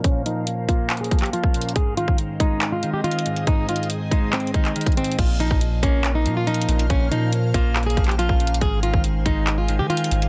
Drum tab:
CC |------------------------------------------------------------------------------------------------|------------------------------------------------------------------------------------------------|------------------------------------------------------------------------------------------------|x-----------------------------------------------------------------------------------------------|
HH |x-----------x-----------x-----------x-----------x---x---x---x---x---x---x-----------x---x---x---|x-----------x-----------x-----------x-----------x-----------x-----------x---x---x---x-----x-----|x-----------x---x---x---x-----------x-----------x---x---x---x-----x-----x--x--x--x--x---x---x---|x-----------x-----------x-----------x-----------x-----------x-----------x---x---x---x-----x-----|
CP |------------------------------------------------x-----------------x-----------------------------|------------------------------------------------x-----------------------------------------------|------------------------------------------------x-----------------x-----------------------------|------------------------------------------------x-----------------------------------------------|
SD |------------------------------------------------------------------------------------------------|------------------------------------------------------------------------------------------------|------------------------------------------------------------------------------------------------|------------------------------------------------------------------------------------------------|
BD |o-----------------------------------o-----------------------o-----------------o-----------------|o-----------------o-----------------o-----------------------------------------------------------|o-----------------------------------o-----------------------o-----------------o-----------------|o-----------------o-----------------o-----------------------------------------------------------|

CC |------------------------------------------------------------------------------------------------|------------------------------------------------------------------------------------------------|
HH |x-----------x-----------x-----------x-----------x---x---x---x---x---x---x-----------x---x---x---|x-----------x-----------x-----------x-----------x-----------x-----------x---x---x---x-----x-----|
CP |------------------------------------------------x-----------------x-----------------------------|------------------------------------------------x-----------------------------------------------|
SD |------------------------------------------------r-----------------------------------------------|------------------------------------------------------------------------------------------------|
BD |o-----------------------------------o-----------------------o-----------------o-----------------|o-----------------o-----------------o-----------------------------------------------------------|